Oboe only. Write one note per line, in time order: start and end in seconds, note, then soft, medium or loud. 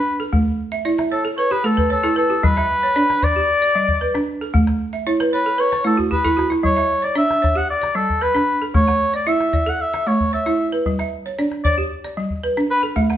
0.00 0.17 B4 medium
1.12 1.24 A4 medium
1.38 1.54 C#5 medium
1.52 1.67 B4 medium
1.66 1.91 A4 medium
1.92 2.16 A4 medium
2.18 2.46 A4 medium
2.44 3.25 B4 loud
3.24 4.28 D5 loud
5.34 5.62 B4 medium
5.60 5.86 C#5 medium
5.87 5.98 A4 medium
6.12 6.49 B4 medium
6.65 7.06 C#5 medium
7.04 7.17 D5 medium
7.17 7.59 E5 loud
7.57 7.69 F#5 medium
7.70 7.97 D5 medium
7.95 8.24 A4 medium
8.22 8.62 B4 medium
8.75 9.12 C#5 medium
9.15 9.30 D5 medium
9.28 9.70 E5 medium
9.69 9.83 F#5 medium
9.81 10.09 E5 medium
10.08 10.33 C#5 medium
10.34 10.70 E5 medium
11.64 11.76 D5 loud
12.71 12.82 B4 medium